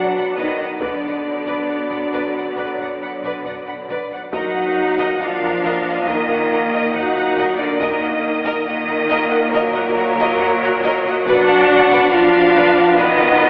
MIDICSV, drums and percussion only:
0, 0, Header, 1, 2, 480
1, 0, Start_track
1, 0, Key_signature, -6, "minor"
1, 0, Tempo, 877193
1, 447, Time_signature, 4, 2, 24, 8
1, 2848, Tempo, 864553
1, 7452, End_track
2, 0, Start_track
2, 0, Title_t, "Taiko and cinematic ensemble drums"
2, 206, Note_on_c, 9, 41, 71
2, 261, Note_off_c, 9, 41, 0
2, 443, Note_on_c, 9, 41, 95
2, 498, Note_off_c, 9, 41, 0
2, 804, Note_on_c, 9, 41, 77
2, 859, Note_off_c, 9, 41, 0
2, 1044, Note_on_c, 9, 43, 48
2, 1099, Note_off_c, 9, 43, 0
2, 1169, Note_on_c, 9, 41, 72
2, 1224, Note_off_c, 9, 41, 0
2, 1408, Note_on_c, 9, 41, 70
2, 1463, Note_off_c, 9, 41, 0
2, 1526, Note_on_c, 9, 43, 51
2, 1581, Note_off_c, 9, 43, 0
2, 1886, Note_on_c, 9, 43, 53
2, 1941, Note_off_c, 9, 43, 0
2, 2126, Note_on_c, 9, 41, 72
2, 2181, Note_off_c, 9, 41, 0
2, 2367, Note_on_c, 9, 41, 94
2, 2421, Note_off_c, 9, 41, 0
2, 2727, Note_on_c, 9, 41, 81
2, 2781, Note_off_c, 9, 41, 0
2, 2967, Note_on_c, 9, 43, 49
2, 3022, Note_off_c, 9, 43, 0
2, 3087, Note_on_c, 9, 41, 77
2, 3143, Note_off_c, 9, 41, 0
2, 3326, Note_on_c, 9, 41, 81
2, 3382, Note_off_c, 9, 41, 0
2, 3450, Note_on_c, 9, 43, 49
2, 3506, Note_off_c, 9, 43, 0
2, 3805, Note_on_c, 9, 43, 59
2, 3861, Note_off_c, 9, 43, 0
2, 4044, Note_on_c, 9, 41, 81
2, 4100, Note_off_c, 9, 41, 0
2, 4286, Note_on_c, 9, 41, 91
2, 4342, Note_off_c, 9, 41, 0
2, 4648, Note_on_c, 9, 41, 89
2, 4704, Note_off_c, 9, 41, 0
2, 4892, Note_on_c, 9, 43, 53
2, 4947, Note_off_c, 9, 43, 0
2, 5010, Note_on_c, 9, 41, 82
2, 5065, Note_off_c, 9, 41, 0
2, 5248, Note_on_c, 9, 41, 80
2, 5304, Note_off_c, 9, 41, 0
2, 5369, Note_on_c, 9, 43, 58
2, 5425, Note_off_c, 9, 43, 0
2, 5725, Note_on_c, 9, 43, 72
2, 5780, Note_off_c, 9, 43, 0
2, 5964, Note_on_c, 9, 41, 80
2, 6019, Note_off_c, 9, 41, 0
2, 6208, Note_on_c, 9, 41, 101
2, 6263, Note_off_c, 9, 41, 0
2, 6569, Note_on_c, 9, 41, 86
2, 6624, Note_off_c, 9, 41, 0
2, 6809, Note_on_c, 9, 43, 54
2, 6865, Note_off_c, 9, 43, 0
2, 6927, Note_on_c, 9, 41, 90
2, 6982, Note_off_c, 9, 41, 0
2, 7165, Note_on_c, 9, 41, 90
2, 7221, Note_off_c, 9, 41, 0
2, 7286, Note_on_c, 9, 43, 64
2, 7342, Note_off_c, 9, 43, 0
2, 7452, End_track
0, 0, End_of_file